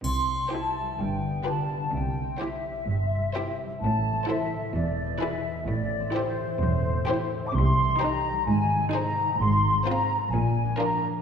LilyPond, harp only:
\new Staff \with { instrumentName = "Harp" } { \clef bass \time 4/4 \key c \major \tempo 4 = 128 \tuplet 3/2 { c8 g8 c'8 g8 e'8 g8 g,8 d8 b8 d8 f'8 d8 } | \tuplet 3/2 { c8 g8 c'8 g8 e'8 g8 c8 c'8 g8 c'8 e'8 g8 } | \tuplet 3/2 { a,8 e8 c'8 e8 e'8 e8 e,8 b,8 b8 b,8 e'8 b,8 } | \tuplet 3/2 { a,8 e8 c'8 e8 e'8 e8 a,8 c'8 e8 c'8 e'8 e8 } |
\key c \minor \tuplet 3/2 { c8 g8 c'8 g8 ees'8 g8 aes,8 ees8 c'8 ees8 ees'8 ees8 } | \tuplet 3/2 { aes,8 aes8 c'8 aes8 f'8 aes8 bes,8 f8 d'8 f8 f'8 f8 } | }